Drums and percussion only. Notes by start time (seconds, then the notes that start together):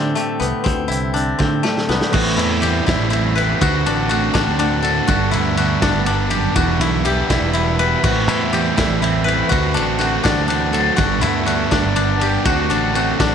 0.17 closed hi-hat
0.42 closed hi-hat
0.66 kick, closed hi-hat
0.91 closed hi-hat
1.16 closed hi-hat
1.40 kick, snare
1.65 snare
1.77 snare
1.90 snare
2.01 snare
2.14 kick, crash
2.39 ride
2.63 ride
2.88 kick, snare, ride
3.13 ride
3.38 ride
3.62 kick, ride
3.86 ride
4.11 ride
4.35 kick, snare, ride
4.59 ride
4.84 ride
5.09 kick, ride
5.33 ride
5.57 ride
5.82 kick, snare, ride
6.06 ride
6.31 ride
6.56 kick, ride
6.81 ride
7.05 ride
7.30 kick, snare, ride
7.55 ride
7.79 ride
8.04 kick, crash
8.29 ride
8.54 ride
8.78 kick, snare, ride
9.04 ride
9.28 ride
9.52 kick, ride
9.77 ride
10.01 ride
10.25 kick, snare, ride
10.50 ride
10.74 ride
10.98 kick, ride
11.23 ride
11.47 ride
11.72 kick, snare, ride
11.96 ride
12.21 ride
12.45 kick, ride
12.71 ride
12.95 ride
13.20 kick, snare, ride